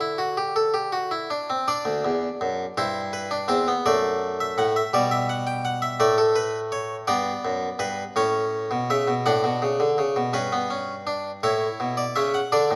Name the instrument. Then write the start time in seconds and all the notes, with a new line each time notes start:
harpsichord
Already playing: D3 F#5
0.01 E4
0.18 F#4
0.37 G4
0.56 A4
0.74 G4
0.92 F#4
1.11 E4
1.30 D4
1.50 C4
1.68 D4 D5
1.85 D2
2.05 E2
2.41 F#2
2.77 G2 E4 C5
3.13 B4
3.31 D4
3.48 E2 C4 C5
3.68 B3
3.86 F#2 A3 D5
4.40 E5
4.58 A2 F#5
4.76 E5
4.94 B2 G3 D5
5.11 E5
5.29 F#5
5.47 G5
5.65 F#5
5.82 E5
6.00 A2 A3 D5
6.18 A4
6.36 B4
6.72 C#5
7.07 G2 B3 D5
7.45 F#2
7.79 G2 B4
8.16 A2 C#4 C#5
8.71 B2
8.90 C#3 E5
9.08 B2
9.26 A2 D4 F#5
9.44 B2
9.62 C#3
9.80 D3
9.98 C#3
10.16 B2
10.33 G2 C#4 B4
10.52 B3
10.70 C#4
11.07 D4
11.43 A2 E4 C#5
11.80 B2
11.97 D5
12.16 C#3 C#4 E5
12.34 F#5
12.52 D3 D4 D5
12.71 A2